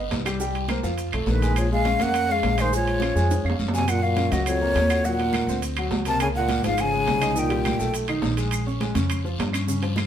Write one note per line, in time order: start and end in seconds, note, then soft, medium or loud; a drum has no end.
0.00 0.20 B3 medium
0.00 0.21 B4 medium
0.00 0.21 D#5 medium
0.11 0.79 C2 loud
0.11 high conga soft
0.11 high timbale medium
0.11 low timbale medium
0.11 short guiro medium
0.11 maracas soft
0.25 0.38 G3 medium
0.25 0.38 G4 medium
0.25 0.38 G5 medium
0.25 high timbale medium
0.25 short guiro medium
0.25 claves medium
0.25 maracas medium
0.40 0.64 G3 medium
0.40 0.64 G4 medium
0.40 0.64 G5 medium
0.40 high conga soft
0.40 long guiro medium
0.40 maracas medium
0.54 high conga soft
0.54 high timbale medium
0.54 maracas soft
0.68 0.81 A#3 medium
0.68 0.81 A#4 medium
0.68 0.82 C5 medium
0.68 high conga medium
0.68 high timbale medium
0.68 low timbale medium
0.68 short guiro medium
0.68 claves medium
0.68 maracas soft
0.83 1.11 F2 medium
0.83 1.07 F3 medium
0.83 1.07 F4 medium
0.83 1.08 F5 medium
0.83 short guiro medium
0.83 maracas medium
0.98 high conga soft
0.98 high timbale medium
0.98 long guiro medium
0.98 maracas medium
1.12 1.26 B1 medium
1.12 1.37 A3 medium
1.12 1.37 A4 medium
1.12 1.37 C#5 medium
1.12 high conga soft
1.12 high timbale medium
1.12 claves medium
1.12 maracas soft
1.26 1.94 A#1 medium
1.26 1.59 D#3 medium
1.26 1.59 B4 medium
1.26 high conga medium
1.26 low timbale medium
1.26 short guiro medium
1.26 maracas soft
1.41 1.66 G#3 medium
1.41 1.66 G#4 medium
1.41 1.66 G#5 medium
1.41 high conga medium
1.41 high timbale medium
1.41 short guiro medium
1.41 maracas medium
1.56 1.71 F3 medium
1.56 1.72 C#5 medium
1.56 high timbale medium
1.56 long guiro medium
1.56 claves medium
1.56 maracas medium
1.71 1.83 G#3 medium
1.71 2.03 G#3 medium
1.71 1.83 G#4 medium
1.71 2.04 F5 medium
1.71 1.84 G#5 medium
1.71 high conga soft
1.71 maracas soft
1.85 1.97 C#4 medium
1.85 1.97 C#5 medium
1.85 1.97 F5 medium
1.85 high conga loud
1.85 high timbale medium
1.85 low timbale medium
1.85 short guiro medium
1.85 maracas soft
1.99 2.40 F2 medium
1.99 2.33 A#3 medium
1.99 2.24 C#4 medium
1.99 2.24 C#5 medium
1.99 2.24 F5 medium
1.99 2.33 F#5 loud
1.99 high conga medium
1.99 high timbale medium
1.99 short guiro medium
1.99 maracas medium
2.14 high conga soft
2.14 high timbale medium
2.14 long guiro medium
2.14 claves medium
2.14 maracas medium
2.29 2.62 G#3 medium
2.29 2.53 C#4 medium
2.29 2.53 C#5 medium
2.29 2.53 F5 medium
2.29 2.62 F5 loud
2.29 maracas soft
2.43 3.10 A#1 medium
2.43 high timbale medium
2.43 low timbale medium
2.43 short guiro medium
2.43 maracas soft
2.58 2.74 D#3 medium
2.58 2.70 G#3 medium
2.58 2.70 G#4 medium
2.58 2.74 C5 medium
2.58 2.70 G#5 medium
2.58 high conga medium
2.58 high timbale medium
2.58 short guiro medium
2.58 claves medium
2.58 maracas medium
2.72 3.56 F3 medium
2.72 2.96 G#3 medium
2.72 2.97 G#4 medium
2.72 3.57 C#5 medium
2.72 2.97 G#5 medium
2.72 high conga soft
2.72 long guiro medium
2.72 maracas medium
2.86 high conga soft
2.86 high timbale medium
2.86 maracas soft
3.00 3.13 C#4 medium
3.00 3.13 C#5 medium
3.00 3.14 F5 medium
3.00 high conga medium
3.00 high timbale medium
3.00 low timbale medium
3.00 short guiro medium
3.00 claves medium
3.00 maracas soft
3.15 3.43 F2 medium
3.15 3.39 G#3 medium
3.15 3.40 G#4 medium
3.15 3.40 G#5 medium
3.15 high conga soft
3.15 short guiro medium
3.15 maracas medium
3.29 high conga soft
3.29 high timbale medium
3.29 long guiro medium
3.29 maracas medium
3.44 3.58 F2 medium
3.44 3.68 C#4 medium
3.44 3.68 C#5 medium
3.44 3.69 F5 medium
3.44 high conga soft
3.44 claves medium
3.44 maracas soft
3.50 low timbale medium
3.59 4.27 F#2 medium
3.59 high conga medium
3.59 short guiro medium
3.59 maracas soft
3.68 low timbale medium
3.73 3.90 C3 medium
3.73 3.86 F#3 medium
3.73 3.86 F#4 medium
3.73 3.86 F#5 medium
3.73 3.90 G#5 medium
3.73 short guiro medium
3.73 maracas medium
3.78 low timbale medium
3.88 4.03 A#2 medium
3.88 4.04 F#5 loud
3.88 high timbale medium
3.88 long guiro medium
3.88 claves medium
3.88 maracas medium
4.02 4.33 A#2 medium
4.02 4.15 F#4 medium
4.02 4.34 F5 medium
4.02 4.15 F#5 medium
4.02 high conga soft
4.02 maracas soft
4.17 4.29 C#4 medium
4.17 4.29 C#5 medium
4.17 high conga loud
4.17 high timbale medium
4.17 low timbale medium
4.17 short guiro medium
4.17 maracas soft
4.31 4.72 C#2 medium
4.31 4.46 F#2 medium
4.31 4.56 F#3 medium
4.31 4.56 F#4 medium
4.31 4.45 D#5 medium
4.31 high conga medium
4.31 high timbale medium
4.31 short guiro medium
4.31 maracas medium
4.46 5.07 F2 medium
4.46 5.07 C#5 medium
4.46 high conga soft
4.46 high timbale medium
4.46 long guiro medium
4.46 claves medium
4.46 maracas medium
4.61 4.85 A#3 medium
4.61 4.85 A#4 medium
4.61 high conga soft
4.61 maracas soft
4.75 5.42 D#2 medium
4.75 high timbale medium
4.75 low timbale medium
4.75 short guiro medium
4.75 maracas soft
4.90 5.02 F#4 medium
4.90 5.02 F#5 medium
4.90 high timbale medium
4.90 short guiro medium
4.90 claves medium
4.90 maracas medium
5.04 5.63 A#2 medium
5.04 5.17 F#3 medium
5.04 5.17 F#4 medium
5.04 5.63 F#5 medium
5.04 high conga soft
5.04 long guiro medium
5.04 maracas medium
5.19 5.43 A#3 medium
5.19 5.43 A#4 medium
5.19 high conga soft
5.19 high timbale medium
5.19 maracas soft
5.33 high conga loud
5.33 high timbale medium
5.33 low timbale medium
5.33 short guiro medium
5.33 claves medium
5.33 maracas soft
5.47 5.88 D2 medium
5.47 5.72 C4 medium
5.47 5.72 C5 medium
5.47 high conga soft
5.47 short guiro medium
5.47 maracas medium
5.62 high conga soft
5.62 high timbale medium
5.62 long guiro medium
5.62 maracas medium
5.76 6.01 F#3 medium
5.76 6.02 F#4 medium
5.76 high conga soft
5.76 high timbale loud
5.76 claves medium
5.76 maracas soft
5.91 6.58 C#2 medium
5.91 high conga medium
5.91 low timbale medium
5.91 short guiro medium
5.91 maracas soft
6.05 6.20 C3 medium
6.05 6.30 A#3 medium
6.05 6.30 A#4 medium
6.05 6.20 A5 loud
6.05 high timbale medium
6.05 short guiro medium
6.05 maracas medium
6.20 6.28 C#3 medium
6.20 6.27 G#5 loud
6.20 high timbale loud
6.20 long guiro medium
6.20 claves medium
6.20 maracas medium
6.35 6.63 A#2 medium
6.35 6.47 F4 medium
6.35 6.47 F5 medium
6.35 6.63 F#5 medium
6.35 high conga soft
6.35 maracas soft
6.49 6.61 A#3 medium
6.49 6.61 A#4 medium
6.49 high conga medium
6.49 high timbale medium
6.49 low timbale medium
6.49 short guiro medium
6.49 maracas soft
6.62 7.03 G#1 medium
6.62 6.83 G#2 medium
6.62 6.88 F3 medium
6.62 6.88 F4 medium
6.62 6.82 F5 medium
6.62 high conga medium
6.62 high timbale medium
6.62 short guiro medium
6.62 maracas medium
6.78 7.39 C#3 medium
6.78 7.40 G#5 loud
6.78 high conga soft
6.78 high timbale medium
6.78 long guiro medium
6.78 claves medium
6.78 maracas medium
6.92 7.17 G#3 medium
6.92 7.17 G#4 medium
6.92 high conga soft
6.92 maracas soft
7.06 7.74 C2 medium
7.06 high timbale medium
7.06 low timbale medium
7.06 short guiro medium
7.06 maracas soft
7.21 7.33 D#4 medium
7.21 7.34 D#5 medium
7.21 high conga medium
7.21 high timbale medium
7.21 short guiro medium
7.21 claves medium
7.21 maracas medium
7.36 7.95 A#2 medium
7.36 7.48 D#3 medium
7.36 7.48 D#4 medium
7.36 7.95 G5 medium
7.36 long guiro medium
7.36 maracas medium
7.50 7.74 G3 medium
7.50 7.74 G4 medium
7.50 high timbale medium
7.50 maracas soft
7.65 high conga loud
7.65 high timbale medium
7.65 low timbale medium
7.65 short guiro medium
7.65 claves medium
7.65 maracas soft
7.79 8.20 B1 medium
7.79 8.03 A3 medium
7.79 8.03 A4 medium
7.79 high conga soft
7.79 short guiro medium
7.79 maracas medium
7.94 high conga soft
7.94 high timbale medium
7.94 long guiro medium
7.94 maracas medium
8.08 8.32 D#3 medium
8.08 8.33 D#4 medium
8.08 high conga soft
8.08 high timbale medium
8.08 claves medium
8.08 maracas soft
8.22 8.90 A#1 loud
8.22 high conga medium
8.22 low timbale medium
8.22 short guiro medium
8.22 maracas soft
8.37 8.61 G#3 medium
8.37 8.62 G#4 medium
8.37 high timbale medium
8.37 short guiro medium
8.37 maracas medium
8.51 high conga soft
8.51 high timbale loud
8.51 claves medium
8.51 maracas medium
8.66 8.78 C#4 medium
8.66 8.79 C#5 medium
8.66 high conga soft
8.66 maracas soft
8.81 8.93 G#3 medium
8.81 8.93 G#4 medium
8.81 high conga medium
8.81 high timbale medium
8.81 low timbale medium
8.81 short guiro medium
8.81 maracas soft
8.95 9.36 F2 medium
8.95 9.19 C#3 medium
8.95 9.19 C#4 medium
8.95 high conga medium
8.95 high timbale medium
8.95 short guiro medium
8.95 maracas medium
9.10 high conga soft
9.10 high timbale loud
9.10 long guiro medium
9.10 claves medium
9.10 maracas medium
9.24 9.48 F3 medium
9.24 9.48 F4 medium
9.24 high conga soft
9.24 maracas soft
9.38 10.06 G2 medium
9.38 high conga soft
9.38 high timbale medium
9.38 low timbale medium
9.38 short guiro medium
9.38 maracas soft
9.53 9.65 C#4 medium
9.53 9.65 C#5 medium
9.53 high timbale medium
9.53 short guiro medium
9.53 claves medium
9.53 maracas medium
9.68 9.80 C#3 medium
9.68 9.80 C#4 medium
9.68 high conga soft
9.68 long guiro medium
9.68 maracas medium
9.83 10.06 F3 medium
9.83 10.06 F4 medium
9.83 high conga soft
9.83 high timbale medium
9.83 maracas soft
9.96 high conga loud
9.96 high timbale medium
9.96 low timbale medium
9.96 short guiro medium
9.96 claves medium
9.96 maracas soft